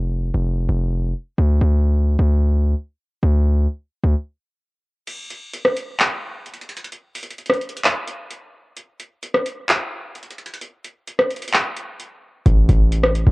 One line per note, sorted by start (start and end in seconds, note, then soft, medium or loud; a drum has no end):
0.00 0.31 F1 loud
0.34 0.68 F1 loud
0.69 1.13 F1 loud
1.38 1.60 D2 loud
1.61 2.17 D2 loud
2.19 2.74 D2 loud
3.23 3.67 D2 loud
4.04 4.15 D2 loud
5.07 closed hi-hat medium
5.07 crash medium
5.30 closed hi-hat medium
5.54 closed hi-hat medium
5.65 cross-stick medium
5.77 closed hi-hat medium
6.00 clap loud
6.00 closed hi-hat medium
6.46 closed hi-hat soft
6.54 closed hi-hat soft
6.61 closed hi-hat medium
6.69 closed hi-hat medium
6.77 closed hi-hat medium
6.84 closed hi-hat medium
6.92 closed hi-hat medium
7.15 closed hi-hat medium
7.15 open hi-hat medium
7.23 closed hi-hat medium
7.30 closed hi-hat medium
7.38 closed hi-hat medium
7.46 cross-stick medium
7.46 closed hi-hat soft
7.54 closed hi-hat soft
7.61 closed hi-hat soft
7.69 closed hi-hat medium
7.77 closed hi-hat medium
7.84 clap loud
7.84 closed hi-hat medium
8.07 closed hi-hat medium
8.30 closed hi-hat medium
8.77 closed hi-hat medium
9.00 closed hi-hat medium
9.23 closed hi-hat medium
9.34 cross-stick medium
9.46 closed hi-hat medium
9.69 clap loud
9.69 closed hi-hat medium
10.15 closed hi-hat soft
10.23 closed hi-hat soft
10.30 closed hi-hat medium
10.38 closed hi-hat medium
10.46 closed hi-hat medium
10.54 closed hi-hat medium
10.61 closed hi-hat medium
10.84 closed hi-hat medium
11.07 closed hi-hat medium
11.19 cross-stick medium
11.30 closed hi-hat soft
11.36 closed hi-hat medium
11.42 closed hi-hat medium
11.48 closed hi-hat medium
11.54 clap loud
11.54 closed hi-hat medium
11.77 closed hi-hat medium
12.00 closed hi-hat medium
12.46 12.68 A1 loud
12.46 kick loud
12.46 closed hi-hat medium
12.69 13.24 A1 loud
12.69 kick medium
12.69 closed hi-hat medium
12.92 closed hi-hat medium
13.03 cross-stick medium
13.15 closed hi-hat medium
13.27 13.32 A1 loud
13.27 kick loud